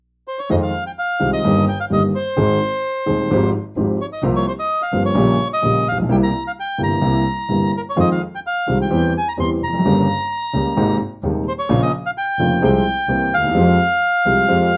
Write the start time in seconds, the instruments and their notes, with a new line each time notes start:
0.28 bandoneon C5
0.39 bandoneon C#5
0.50 grand piano F2 D#3 F3 G#3 C4 F4, double bass F2, bandoneon D#5
0.63 bandoneon F5
0.87 bandoneon G5
0.99 bandoneon F5
1.19 grand piano C2 C3 D#3 G#3 C4 F4, double bass C2
1.33 bandoneon D#5
1.44 double bass G1, grand piano G1 G2 D#3 G3 A#3 G4
1.69 bandoneon G5
1.80 bandoneon F5
1.90 grand piano G1 G2 D#3 G3 A#3 G4, double bass G1, bandoneon D#5
2.15 bandoneon C5
2.37 grand piano G#1 G#2 D#3 G#3 C4 G#4, double bass G#1
3.06 grand piano D#1 D#2 D#3 G#3 C4 G#4, double bass D#2
3.30 double bass G#1, grand piano G#1 G#2 F3 G#3 C4 G4
3.76 double bass G#1, grand piano G#1 G#2 F3 G#3 C4 G4
4.01 bandoneon C#5
4.13 bandoneon D#5
4.22 double bass C2, grand piano C2 C3 F3 A#3 C4 G4
4.36 bandoneon C#5
4.48 bandoneon C5
4.59 bandoneon D#5
4.82 bandoneon F5
4.92 double bass G1, grand piano G1 G2 F3 A#3 C4 G4
5.06 bandoneon C#5
5.15 grand piano A#1 A#2 C#3 G3 A#3 G4, double bass A#1
5.53 bandoneon D#5
5.62 double bass A#1, grand piano A#1 A#2 C#3 G3 A#3 G4
5.86 double bass A#1, bandoneon F5
5.92 grand piano A1
5.97 grand piano A#1
6.02 grand piano B1
6.09 double bass C2, grand piano C2 C3 G3 A#3 E4, bandoneon G5
6.23 bandoneon A#5
6.47 bandoneon F5
6.60 bandoneon G5
6.78 grand piano G1 G2 C3 G3 A#3 E4, double bass G1
6.84 bandoneon A#5
7.01 grand piano C2 C3 G3 A#3 E4, double bass C2
7.49 grand piano G1 G2 C3 G3 A#3 E4, double bass G1
7.77 bandoneon A#4
7.90 bandoneon C#5
7.96 double bass F2, grand piano F2 D#3 F3 G#3 C4 F4, bandoneon D#5
8.12 bandoneon F5
8.35 bandoneon G5
8.47 bandoneon F5
8.67 double bass C2, grand piano C2 C3 D#3 G#3 C4 F4
8.82 bandoneon G5
8.90 grand piano E2 E3 G3 C4 G4, double bass E2
9.18 bandoneon G#5
9.29 bandoneon A#5
9.38 double bass E2, grand piano E2 E3 G3 C4 G4, bandoneon C6
9.62 double bass F1, bandoneon A#5
9.68 grand piano E2
9.74 grand piano F2
9.79 grand piano F#2
9.84 double bass G1, grand piano G1 G2 C#3 G3 A#3 G4
10.53 double bass C#2, grand piano C#2 C#3 G3 A#3 G4
10.77 grand piano G#1 G#2 C3 G#3 A#3 D#4, double bass G#1
11.23 grand piano D#1 D#2 C3 G#3 A#3 D#4, double bass D#2
11.48 bandoneon C5
11.59 bandoneon C#5
11.69 grand piano A#1 A#2 C#3 F3 A#3 F4, double bass A#1
11.82 bandoneon D#5
12.06 bandoneon F5
12.18 bandoneon G5
12.39 double bass F1, grand piano F1 F2 C#3 F3 A#3 F4
12.62 double bass C2, grand piano C2 C3 F3 G#3 C4 G#4, bandoneon G5
13.07 double bass C2, grand piano C2 C3 E3 A#3 C4 G4
13.31 double bass D#2, bandoneon F5
13.38 grand piano D2
13.44 grand piano D#2
13.49 grand piano E2
13.54 double bass F2, grand piano F2 F3 G#3 C4 G4
14.25 grand piano C2 C3 F3 G#3 C4 G4, double bass C2
14.48 grand piano F2 F3 G#3 C4 G4, double bass F2